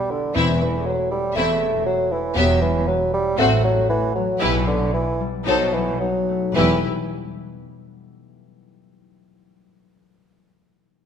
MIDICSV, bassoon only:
0, 0, Header, 1, 2, 480
1, 0, Start_track
1, 0, Key_signature, 1, "minor"
1, 0, Tempo, 502934
1, 340, Time_signature, 4, 2, 24, 8
1, 2739, Tempo, 515464
1, 4659, Tempo, 542495
1, 10080, End_track
2, 0, Start_track
2, 0, Title_t, "Bassoon"
2, 0, Program_c, 0, 70
2, 0, Note_on_c, 0, 55, 70
2, 99, Note_on_c, 0, 50, 56
2, 114, Note_off_c, 0, 55, 0
2, 333, Note_on_c, 0, 52, 52
2, 348, Note_off_c, 0, 50, 0
2, 576, Note_off_c, 0, 52, 0
2, 582, Note_on_c, 0, 52, 59
2, 817, Note_on_c, 0, 54, 61
2, 832, Note_off_c, 0, 52, 0
2, 1054, Note_off_c, 0, 54, 0
2, 1060, Note_on_c, 0, 55, 63
2, 1291, Note_off_c, 0, 55, 0
2, 1297, Note_on_c, 0, 57, 67
2, 1768, Note_off_c, 0, 57, 0
2, 1772, Note_on_c, 0, 54, 70
2, 2018, Note_on_c, 0, 52, 58
2, 2033, Note_off_c, 0, 54, 0
2, 2262, Note_on_c, 0, 54, 73
2, 2276, Note_off_c, 0, 52, 0
2, 2489, Note_off_c, 0, 54, 0
2, 2495, Note_on_c, 0, 52, 66
2, 2739, Note_on_c, 0, 54, 73
2, 2753, Note_off_c, 0, 52, 0
2, 2976, Note_off_c, 0, 54, 0
2, 2984, Note_on_c, 0, 55, 71
2, 3213, Note_off_c, 0, 55, 0
2, 3222, Note_on_c, 0, 57, 71
2, 3449, Note_off_c, 0, 57, 0
2, 3455, Note_on_c, 0, 54, 74
2, 3687, Note_off_c, 0, 54, 0
2, 3691, Note_on_c, 0, 52, 78
2, 3926, Note_off_c, 0, 52, 0
2, 3932, Note_on_c, 0, 54, 65
2, 4174, Note_on_c, 0, 52, 70
2, 4188, Note_off_c, 0, 54, 0
2, 4411, Note_off_c, 0, 52, 0
2, 4417, Note_on_c, 0, 50, 69
2, 4656, Note_off_c, 0, 50, 0
2, 4660, Note_on_c, 0, 52, 72
2, 4958, Note_off_c, 0, 52, 0
2, 5133, Note_on_c, 0, 54, 72
2, 5366, Note_on_c, 0, 52, 68
2, 5380, Note_off_c, 0, 54, 0
2, 5598, Note_off_c, 0, 52, 0
2, 5604, Note_on_c, 0, 54, 64
2, 6085, Note_off_c, 0, 54, 0
2, 6097, Note_on_c, 0, 52, 62
2, 6297, Note_off_c, 0, 52, 0
2, 10080, End_track
0, 0, End_of_file